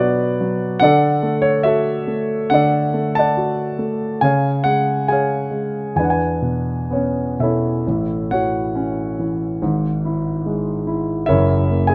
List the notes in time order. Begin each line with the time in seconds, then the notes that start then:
Already playing: B2 F#3 D4 B4 C#5 D5 F#5
0.00 B3 F#4
0.41 F#3
0.80 D3 D5 F#5
0.84 A4
1.23 A3
1.42 C#5
1.63 F#4 A4 E5
2.07 A3
2.50 D3 D5 F#5
2.54 A4
2.94 A3
3.15 D5 A5
3.20 F#5
3.37 F#4
3.79 A3
4.21 C#3 C#5 F5 G#5
4.64 G#3 F#5
5.08 G#4 F5 G#5
5.12 C#5
5.51 G#3
5.96 E2 D4 B4 G#5
6.04 F#5
6.10 B4 G#5
6.42 B2
6.91 B3 C#4 C#5
7.39 B2 E4 A4 C#5 E5
7.87 A1 A2
8.31 E3 F#4 C#5 F#5
8.75 C#4
9.19 E3
9.62 G#1 G#2
10.05 E4
10.46 G#3
10.87 E4
11.26 F#1 F#2 E4 A#4 C#5 E5
11.70 A#3
11.87 G#4 G#5